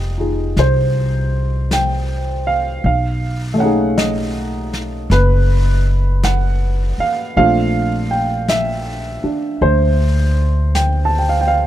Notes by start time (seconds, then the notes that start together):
Already playing: F1 G#3 C4 D#4 G4 D#5 F5 G5
0.18 D#4 F4 G#4
0.56 C2 C5, brush sweep, snare
1.71 G5, brush sweep, snare, hi-hat pedal
2.47 F5
2.84 B1 F5, brush sweep
3.54 A3 C#4
3.60 D#4 F#5
3.65 G#4
3.98 D#5, brush sweep, snare, hi-hat pedal
4.73 snare
5.10 F#1 B4, brush sweep, snare
6.23 F#5, brush sweep, snare, hi-hat pedal
6.98 F5, muted upright bass stroke
7.36 A#1 A3 C4 D4 F4 F5, brush sweep
8.11 G5
8.48 E5, brush sweep, snare, hi-hat pedal
9.24 D4, muted upright bass stroke
9.61 D2 C5, brush sweep
10.75 G5, brush sweep, snare, hi-hat pedal
11.05 A5
11.19 G5
11.29 F5
11.41 G5
11.48 F5